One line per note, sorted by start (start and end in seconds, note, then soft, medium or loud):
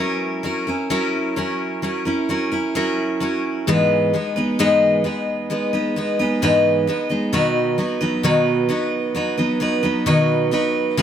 0.00 0.42 F#3 medium
0.00 0.43 C#4 medium
0.00 0.44 E4 medium
0.00 0.44 A#4 medium
0.43 0.67 F#3 soft
0.43 0.68 C#4 soft
0.43 0.67 E4 soft
0.43 0.66 A#4 soft
0.67 0.89 C#4 soft
0.67 0.90 E4 soft
0.67 0.90 A#4 soft
0.90 1.35 F#3 medium
0.90 1.36 C#4 medium
0.90 1.36 E4 medium
0.90 1.37 A#4 medium
1.36 1.81 F#3 medium
1.36 1.82 C#4 soft
1.36 1.83 E4 medium
1.36 1.83 A#4 medium
1.82 2.06 F#3 soft
1.82 2.06 C#4 soft
1.82 2.05 E4 soft
1.82 2.04 A#4 soft
2.05 2.29 C#4 soft
2.05 2.30 E4 soft
2.05 2.29 A#4 soft
2.29 2.52 F#3 soft
2.29 2.52 C#4 medium
2.29 2.51 E4 soft
2.29 2.50 A#4 medium
2.52 2.74 C#4 soft
2.52 2.75 E4 soft
2.52 2.75 A#4 soft
2.75 3.19 F#3 medium
2.75 3.20 C#4 medium
2.75 3.21 E4 medium
2.75 3.21 A#4 medium
3.20 3.67 F#3 soft
3.20 3.67 C#4 soft
3.20 3.68 E4 soft
3.20 3.68 A#4 medium
3.67 4.13 G#2 medium
3.67 4.14 E3 medium
3.67 4.12 G#3 medium
3.67 4.13 B3 medium
3.67 4.14 D#4 medium
3.67 4.14 B4 medium
4.13 4.36 G#3 soft
4.13 4.36 B3 soft
4.13 4.36 D#4 soft
4.13 4.35 B4 soft
4.36 4.58 G#3 soft
4.36 4.59 B3 soft
4.36 4.59 D#4 soft
4.36 4.59 B4 soft
4.59 5.05 G#2 medium
4.59 5.05 E3 medium
4.59 5.03 G#3 medium
4.59 5.04 B3 medium
4.59 5.05 D#4 medium
4.59 5.05 B4 medium
5.04 5.49 G#3 medium
5.04 5.49 B3 soft
5.04 5.50 D#4 soft
5.04 5.51 B4 soft
5.50 5.73 G#3 medium
5.50 5.73 B3 medium
5.50 5.73 D#4 soft
5.50 5.72 B4 medium
5.73 5.95 G#3 soft
5.73 5.96 B3 soft
5.73 5.96 D#4 soft
5.73 5.96 B4 soft
5.96 6.19 G#3 soft
5.96 6.19 B3 soft
5.96 6.19 D#4 medium
5.96 6.18 B4 medium
6.19 6.41 G#3 soft
6.19 6.42 B3 soft
6.19 6.42 D#4 soft
6.19 6.42 B4 medium
6.42 6.87 G#2 medium
6.42 6.88 E3 medium
6.42 6.86 G#3 medium
6.42 6.87 B3 medium
6.42 6.88 D#4 medium
6.42 6.88 B4 medium
6.87 7.10 G#3 soft
6.87 7.10 B3 medium
6.87 7.09 D#4 medium
6.87 7.08 B4 medium
7.09 7.33 G#3 soft
7.09 7.32 B3 soft
7.09 7.33 D#4 soft
7.09 7.32 B4 soft
7.33 7.78 B2 medium
7.33 7.78 D#3 medium
7.33 7.77 F#3 medium
7.33 7.77 B3 medium
7.33 7.78 D#4 medium
7.33 7.79 B4 medium
7.78 8.01 F#3 soft
7.78 8.01 B3 soft
7.78 8.00 D#4 soft
7.78 7.99 B4 soft
8.01 8.23 F#3 soft
8.01 8.23 B3 soft
8.01 8.24 D#4 soft
8.01 8.23 B4 medium
8.23 8.69 B2 medium
8.23 8.69 D#3 medium
8.23 8.67 F#3 medium
8.23 8.68 B3 medium
8.23 8.69 D#4 medium
8.23 8.70 B4 medium
8.69 9.13 F#3 medium
8.69 9.14 B3 medium
8.69 9.15 D#4 medium
8.69 9.15 B4 medium
9.15 9.37 F#3 soft
9.15 9.38 B3 medium
9.15 9.37 D#4 medium
9.15 9.36 B4 soft
9.38 9.59 F#3 soft
9.38 9.60 B3 soft
9.38 9.60 D#4 soft
9.38 9.60 B4 soft
9.60 9.83 F#3 medium
9.60 9.83 B3 medium
9.60 9.82 D#4 soft
9.60 9.81 B4 medium
9.83 10.06 F#3 soft
9.83 10.06 B3 soft
9.83 10.06 D#4 soft
9.83 10.06 B4 soft
10.06 10.52 B2 medium
10.06 10.52 D#3 medium
10.06 10.50 F#3 medium
10.06 10.51 B3 medium
10.06 10.52 D#4 medium
10.06 10.52 B4 medium
10.51 10.97 F#3 soft
10.51 10.97 B3 medium
10.51 10.98 D#4 medium
10.51 10.98 B4 medium
10.97 11.02 C#3 medium
10.97 11.02 G#3 medium
10.97 11.02 B3 medium
10.97 11.02 F4 medium
10.97 11.02 B4 medium